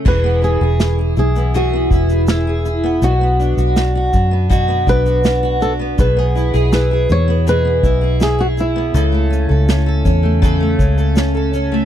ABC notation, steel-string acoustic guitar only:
X:1
M:4/4
L:1/16
Q:1/4=81
K:Emix
V:1 name="Steel-string acoustic guitar"
[E,G] B, E G E G E B, [E,G] B, E G E G E B, | [B,,F] B, D F D F D B, [B,,F] B, D F D F D B, | [B,,G] B, E G E G E B, [B,,G] B, E G E G E B, | [C,A] A, C A C A C A, [C,A] A, C A C A C A, |]